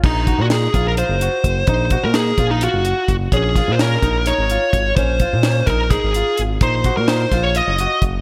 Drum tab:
CC |x------|-------|-------|-------|
HH |-xxxxxx|xxxxxxx|xxxxxxx|xxxxxxx|
SD |--o----|--o----|-oo----|--o----|
BD |oo-o--o|oo-o--o|oo-o--o|oo-oo--|

CC |-------|
HH |xxxxxxx|
SD |--oo---|
BD |oo-o--o|